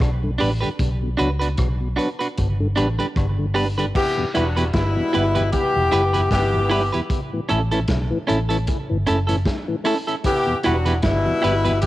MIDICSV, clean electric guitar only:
0, 0, Header, 1, 2, 480
1, 0, Start_track
1, 0, Tempo, 788436
1, 484, Time_signature, 4, 2, 24, 8
1, 7223, End_track
2, 0, Start_track
2, 0, Title_t, "Clean electric guitar"
2, 0, Program_c, 0, 27
2, 234, Note_on_c, 0, 62, 77
2, 244, Note_on_c, 0, 67, 90
2, 249, Note_on_c, 0, 71, 88
2, 304, Note_off_c, 0, 62, 0
2, 309, Note_off_c, 0, 67, 0
2, 312, Note_off_c, 0, 71, 0
2, 369, Note_on_c, 0, 71, 58
2, 376, Note_on_c, 0, 67, 64
2, 379, Note_on_c, 0, 62, 50
2, 414, Note_off_c, 0, 71, 0
2, 417, Note_off_c, 0, 67, 0
2, 419, Note_off_c, 0, 62, 0
2, 714, Note_on_c, 0, 62, 83
2, 721, Note_on_c, 0, 66, 89
2, 726, Note_on_c, 0, 71, 100
2, 785, Note_off_c, 0, 62, 0
2, 788, Note_off_c, 0, 66, 0
2, 791, Note_off_c, 0, 71, 0
2, 849, Note_on_c, 0, 71, 63
2, 856, Note_on_c, 0, 66, 57
2, 862, Note_on_c, 0, 62, 57
2, 894, Note_off_c, 0, 71, 0
2, 898, Note_off_c, 0, 66, 0
2, 900, Note_off_c, 0, 62, 0
2, 1195, Note_on_c, 0, 62, 67
2, 1199, Note_on_c, 0, 66, 66
2, 1205, Note_on_c, 0, 71, 62
2, 1265, Note_off_c, 0, 62, 0
2, 1267, Note_off_c, 0, 66, 0
2, 1271, Note_off_c, 0, 71, 0
2, 1335, Note_on_c, 0, 71, 58
2, 1343, Note_on_c, 0, 66, 52
2, 1346, Note_on_c, 0, 62, 45
2, 1377, Note_off_c, 0, 71, 0
2, 1381, Note_off_c, 0, 66, 0
2, 1383, Note_off_c, 0, 62, 0
2, 1679, Note_on_c, 0, 62, 79
2, 1686, Note_on_c, 0, 67, 80
2, 1689, Note_on_c, 0, 71, 85
2, 1747, Note_off_c, 0, 62, 0
2, 1751, Note_off_c, 0, 67, 0
2, 1752, Note_off_c, 0, 71, 0
2, 1819, Note_on_c, 0, 71, 60
2, 1825, Note_on_c, 0, 67, 56
2, 1829, Note_on_c, 0, 62, 56
2, 1859, Note_off_c, 0, 71, 0
2, 1862, Note_off_c, 0, 67, 0
2, 1864, Note_off_c, 0, 62, 0
2, 2156, Note_on_c, 0, 62, 81
2, 2160, Note_on_c, 0, 67, 83
2, 2166, Note_on_c, 0, 71, 82
2, 2226, Note_off_c, 0, 62, 0
2, 2228, Note_off_c, 0, 67, 0
2, 2231, Note_off_c, 0, 71, 0
2, 2299, Note_on_c, 0, 71, 58
2, 2305, Note_on_c, 0, 67, 58
2, 2311, Note_on_c, 0, 62, 59
2, 2339, Note_off_c, 0, 71, 0
2, 2342, Note_off_c, 0, 67, 0
2, 2346, Note_off_c, 0, 62, 0
2, 2647, Note_on_c, 0, 64, 73
2, 2650, Note_on_c, 0, 67, 75
2, 2658, Note_on_c, 0, 71, 81
2, 2711, Note_off_c, 0, 64, 0
2, 2713, Note_off_c, 0, 67, 0
2, 2717, Note_off_c, 0, 71, 0
2, 2779, Note_on_c, 0, 71, 64
2, 2785, Note_on_c, 0, 67, 59
2, 2787, Note_on_c, 0, 64, 52
2, 2819, Note_off_c, 0, 71, 0
2, 2822, Note_off_c, 0, 67, 0
2, 2823, Note_off_c, 0, 64, 0
2, 3123, Note_on_c, 0, 64, 74
2, 3129, Note_on_c, 0, 67, 75
2, 3134, Note_on_c, 0, 71, 88
2, 3189, Note_off_c, 0, 64, 0
2, 3192, Note_off_c, 0, 67, 0
2, 3195, Note_off_c, 0, 71, 0
2, 3256, Note_on_c, 0, 71, 61
2, 3263, Note_on_c, 0, 67, 60
2, 3267, Note_on_c, 0, 64, 59
2, 3298, Note_off_c, 0, 71, 0
2, 3301, Note_off_c, 0, 67, 0
2, 3303, Note_off_c, 0, 64, 0
2, 3602, Note_on_c, 0, 64, 76
2, 3609, Note_on_c, 0, 67, 89
2, 3611, Note_on_c, 0, 71, 95
2, 3668, Note_off_c, 0, 64, 0
2, 3672, Note_off_c, 0, 67, 0
2, 3673, Note_off_c, 0, 71, 0
2, 3735, Note_on_c, 0, 71, 58
2, 3739, Note_on_c, 0, 67, 58
2, 3747, Note_on_c, 0, 64, 53
2, 3777, Note_off_c, 0, 71, 0
2, 3779, Note_off_c, 0, 67, 0
2, 3782, Note_off_c, 0, 64, 0
2, 4076, Note_on_c, 0, 64, 88
2, 4084, Note_on_c, 0, 67, 101
2, 4087, Note_on_c, 0, 71, 108
2, 4145, Note_off_c, 0, 64, 0
2, 4149, Note_off_c, 0, 67, 0
2, 4151, Note_off_c, 0, 71, 0
2, 4217, Note_on_c, 0, 71, 66
2, 4223, Note_on_c, 0, 67, 52
2, 4226, Note_on_c, 0, 64, 52
2, 4257, Note_off_c, 0, 71, 0
2, 4260, Note_off_c, 0, 67, 0
2, 4262, Note_off_c, 0, 64, 0
2, 4558, Note_on_c, 0, 61, 78
2, 4562, Note_on_c, 0, 64, 81
2, 4568, Note_on_c, 0, 69, 83
2, 4626, Note_off_c, 0, 61, 0
2, 4628, Note_off_c, 0, 64, 0
2, 4631, Note_off_c, 0, 69, 0
2, 4697, Note_on_c, 0, 69, 71
2, 4702, Note_on_c, 0, 64, 54
2, 4710, Note_on_c, 0, 61, 59
2, 4737, Note_off_c, 0, 69, 0
2, 4740, Note_off_c, 0, 64, 0
2, 4744, Note_off_c, 0, 61, 0
2, 5037, Note_on_c, 0, 61, 71
2, 5042, Note_on_c, 0, 64, 73
2, 5045, Note_on_c, 0, 69, 68
2, 5105, Note_off_c, 0, 61, 0
2, 5108, Note_off_c, 0, 64, 0
2, 5109, Note_off_c, 0, 69, 0
2, 5169, Note_on_c, 0, 69, 62
2, 5174, Note_on_c, 0, 64, 52
2, 5180, Note_on_c, 0, 61, 53
2, 5213, Note_off_c, 0, 69, 0
2, 5215, Note_off_c, 0, 64, 0
2, 5218, Note_off_c, 0, 61, 0
2, 5519, Note_on_c, 0, 61, 82
2, 5523, Note_on_c, 0, 64, 78
2, 5528, Note_on_c, 0, 69, 105
2, 5586, Note_off_c, 0, 61, 0
2, 5588, Note_off_c, 0, 64, 0
2, 5590, Note_off_c, 0, 69, 0
2, 5644, Note_on_c, 0, 69, 60
2, 5651, Note_on_c, 0, 64, 57
2, 5656, Note_on_c, 0, 61, 56
2, 5690, Note_off_c, 0, 69, 0
2, 5693, Note_off_c, 0, 64, 0
2, 5696, Note_off_c, 0, 61, 0
2, 5996, Note_on_c, 0, 61, 89
2, 6001, Note_on_c, 0, 64, 99
2, 6006, Note_on_c, 0, 69, 104
2, 6064, Note_off_c, 0, 61, 0
2, 6066, Note_off_c, 0, 64, 0
2, 6069, Note_off_c, 0, 69, 0
2, 6133, Note_on_c, 0, 69, 65
2, 6135, Note_on_c, 0, 64, 60
2, 6142, Note_on_c, 0, 61, 47
2, 6174, Note_off_c, 0, 69, 0
2, 6175, Note_off_c, 0, 64, 0
2, 6179, Note_off_c, 0, 61, 0
2, 6479, Note_on_c, 0, 64, 87
2, 6484, Note_on_c, 0, 67, 95
2, 6489, Note_on_c, 0, 71, 92
2, 6545, Note_off_c, 0, 64, 0
2, 6548, Note_off_c, 0, 67, 0
2, 6550, Note_off_c, 0, 71, 0
2, 6608, Note_on_c, 0, 71, 58
2, 6615, Note_on_c, 0, 67, 60
2, 6621, Note_on_c, 0, 64, 57
2, 6652, Note_off_c, 0, 71, 0
2, 6655, Note_off_c, 0, 67, 0
2, 6658, Note_off_c, 0, 64, 0
2, 6951, Note_on_c, 0, 64, 69
2, 6955, Note_on_c, 0, 67, 83
2, 6964, Note_on_c, 0, 71, 77
2, 7021, Note_off_c, 0, 64, 0
2, 7023, Note_off_c, 0, 67, 0
2, 7027, Note_off_c, 0, 71, 0
2, 7090, Note_on_c, 0, 71, 58
2, 7095, Note_on_c, 0, 67, 47
2, 7101, Note_on_c, 0, 64, 44
2, 7132, Note_off_c, 0, 71, 0
2, 7135, Note_off_c, 0, 67, 0
2, 7138, Note_off_c, 0, 64, 0
2, 7223, End_track
0, 0, End_of_file